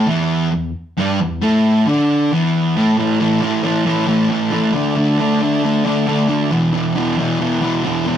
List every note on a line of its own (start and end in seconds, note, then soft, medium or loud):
0.06 0.50 E2 medium
0.06 0.52 E3 loud
0.52 0.69 E2 medium
0.97 1.19 G2 medium
0.97 1.20 G3 medium
1.21 1.38 E2 medium
1.41 1.85 A2 medium
1.41 1.86 A3 loud
1.86 2.30 D3 medium
1.86 2.31 D4 loud
2.31 2.75 E2 medium
2.31 2.75 E3 loud
2.75 2.96 A2 medium
2.75 2.98 A3 loud
2.97 3.18 A2 loud
2.97 3.19 E3 loud
2.97 3.21 A3 loud
3.19 3.40 A2 medium
3.19 3.42 E3 medium
3.19 3.44 A3 medium
3.41 3.62 A2 loud
3.41 3.63 E3 loud
3.41 3.65 A3 loud
3.63 3.84 A2 medium
3.63 3.85 E3 loud
3.63 3.85 A3 loud
3.86 4.05 A2 medium
3.86 4.06 E3 loud
3.86 4.07 A3 loud
4.07 4.28 A2 medium
4.07 4.29 E3 medium
4.07 4.30 A3 loud
4.29 4.50 A2 loud
4.29 4.51 E3 loud
4.29 4.52 A3 loud
4.51 4.72 A2 medium
4.51 4.73 E3 medium
4.51 4.73 A3 medium
4.73 4.94 D3 loud
4.73 4.96 A3 loud
4.73 4.97 D4 loud
4.95 5.17 D3 loud
4.95 5.18 A3 medium
4.95 5.19 D4 medium
5.18 5.40 D3 loud
5.18 5.41 A3 loud
5.18 5.41 D4 loud
5.41 5.62 D3 medium
5.41 5.63 A3 loud
5.41 5.63 D4 loud
5.64 5.84 D3 loud
5.64 5.85 A3 loud
5.64 5.86 D4 loud
5.85 6.06 D3 medium
5.85 6.07 A3 medium
5.85 6.07 D4 loud
6.07 6.27 D3 loud
6.07 6.28 A3 loud
6.07 6.28 D4 loud
6.28 6.49 D3 medium
6.28 6.50 A3 loud
6.28 6.50 D4 medium
6.50 6.72 E2 loud
6.50 6.73 B2 loud
6.50 6.75 E3 loud
6.73 6.95 E2 medium
6.73 6.94 B2 medium
6.73 6.96 E3 medium
6.95 7.16 E2 loud
6.95 7.17 B2 loud
6.95 7.18 E3 loud
7.17 7.38 E2 medium
7.17 7.40 B2 loud
7.17 7.41 E3 medium
7.40 7.59 E2 loud
7.40 7.60 B2 loud
7.40 7.62 E3 loud
7.61 7.83 E2 medium
7.61 7.84 B2 loud
7.61 7.85 E3 loud
7.84 8.04 E2 loud
7.84 8.06 B2 loud
7.84 8.07 E3 loud
8.05 8.18 E2 medium
8.05 8.18 B2 medium
8.05 8.18 E3 medium